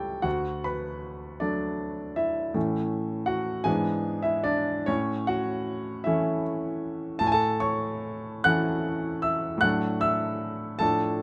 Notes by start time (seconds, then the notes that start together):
Already playing: C#2 G3 A3 E4 G4 A4 C#5 G5 A5 C#6
0.22 D2 F#4 F#5
0.64 B4 B5
1.40 F#3 A3 D4 D5
2.16 E4 E5
2.54 A2 E3 A3 C#4
3.26 F#4 F#5
3.64 G#2 E3 B3 D4 G#4 G#5
4.22 E4 E5
4.44 D4 D5
4.86 A2 C#4 C#5
5.27 F#4 F#5
6.04 E3 A3 C#4 E4 E5
7.19 A2 A5
7.27 G#5
7.32 A4 A5
7.60 C#5 C#6
8.44 E3 A3 C#4 F#5 F#6
9.22 E5 E6
9.58 A2 F#5 F#6
9.62 F#3 A3 D4
10.01 E5 E6
10.79 A2 F3 A3 D4 A4 A5